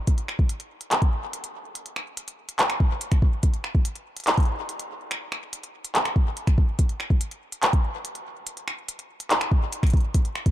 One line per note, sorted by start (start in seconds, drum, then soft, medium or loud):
0.07 kick medium
0.07 closed hi-hat medium
0.18 closed hi-hat soft
0.28 finger snap medium
0.39 kick medium
0.49 closed hi-hat medium
0.60 closed hi-hat soft
0.81 closed hi-hat medium
0.91 clap loud
0.91 closed hi-hat medium
1.02 kick loud
1.02 closed hi-hat soft
1.33 closed hi-hat medium
1.44 closed hi-hat medium
1.75 closed hi-hat medium
1.86 closed hi-hat soft
1.96 finger snap medium
2.17 closed hi-hat medium
2.28 closed hi-hat soft
2.49 closed hi-hat medium
2.59 clap loud
2.59 closed hi-hat medium
2.70 finger snap medium
2.70 closed hi-hat soft
2.80 kick loud
3.01 closed hi-hat medium
3.12 finger snap soft
3.12 kick loud
3.12 closed hi-hat medium
3.22 kick loud
3.43 kick medium
3.43 closed hi-hat medium
3.54 closed hi-hat soft
3.64 finger snap soft
3.75 kick medium
3.85 closed hi-hat medium
3.96 closed hi-hat soft
4.17 closed hi-hat soft
4.20 closed hi-hat soft
4.24 clap loud
4.24 closed hi-hat soft
4.27 closed hi-hat medium
4.31 closed hi-hat soft
4.34 closed hi-hat soft
4.37 kick loud
4.37 closed hi-hat soft
4.40 closed hi-hat soft
4.43 closed hi-hat soft
4.45 closed hi-hat soft
4.69 closed hi-hat medium
4.79 closed hi-hat medium
5.11 finger snap medium
5.11 closed hi-hat medium
5.32 finger snap medium
5.53 closed hi-hat medium
5.63 closed hi-hat soft
5.85 closed hi-hat soft
5.95 clap loud
5.95 closed hi-hat medium
6.05 finger snap medium
6.05 closed hi-hat soft
6.16 kick loud
6.37 closed hi-hat medium
6.47 finger snap soft
6.47 kick loud
6.47 closed hi-hat medium
6.58 kick loud
6.79 kick medium
6.79 closed hi-hat medium
6.89 closed hi-hat soft
7.00 finger snap medium
7.10 kick medium
7.21 closed hi-hat medium
7.31 closed hi-hat soft
7.52 closed hi-hat soft
7.63 clap loud
7.63 closed hi-hat medium
7.73 kick loud
7.73 closed hi-hat soft
8.05 closed hi-hat medium
8.15 closed hi-hat medium
8.47 closed hi-hat medium
8.57 closed hi-hat soft
8.68 finger snap medium
8.89 closed hi-hat medium
8.99 closed hi-hat soft
9.20 closed hi-hat soft
9.31 clap loud
9.31 closed hi-hat medium
9.41 finger snap medium
9.41 closed hi-hat soft
9.52 kick loud
9.73 closed hi-hat medium
9.83 finger snap soft
9.83 kick loud
9.83 closed hi-hat medium
9.87 closed hi-hat soft
9.90 closed hi-hat soft
9.94 kick loud
9.94 closed hi-hat soft
9.97 closed hi-hat soft
10.01 closed hi-hat soft
10.14 kick medium
10.14 closed hi-hat medium
10.25 closed hi-hat soft
10.35 finger snap medium
10.46 kick medium
10.46 closed hi-hat soft